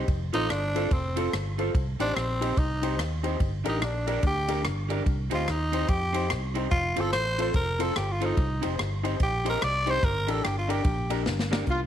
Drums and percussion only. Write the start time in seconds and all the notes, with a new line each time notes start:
0.08 kick, ride
0.33 ride
0.50 cross-stick, ride
0.76 ride
0.91 kick, ride
1.17 ride
1.33 cross-stick, ride
1.59 ride
1.75 kick, ride
2.00 ride
2.16 cross-stick, ride
2.42 ride
2.57 kick, ride
2.83 ride
2.99 cross-stick, ride
3.24 ride
3.40 kick, ride
3.65 ride
3.82 cross-stick, ride
4.07 ride
4.23 kick, ride
4.48 ride
4.65 cross-stick, ride
4.90 ride
5.06 kick, ride
5.31 ride
5.48 cross-stick, ride
5.73 ride
5.88 kick, ride
6.14 ride
6.30 cross-stick, ride
6.55 ride
6.71 kick, ride
6.96 ride
7.13 cross-stick, ride
7.39 ride
7.54 kick, ride
7.80 ride
7.96 cross-stick, ride
8.21 ride
8.37 kick, ride
8.63 ride
8.79 cross-stick, ride
9.05 ride
9.20 kick, ride
9.46 ride
9.62 cross-stick, ride
9.87 ride
10.03 kick, ride
10.28 ride
10.44 cross-stick, ride
10.70 ride
10.84 kick, ride
11.10 ride
11.26 snare
11.39 snare
11.53 snare
11.67 kick, closed hi-hat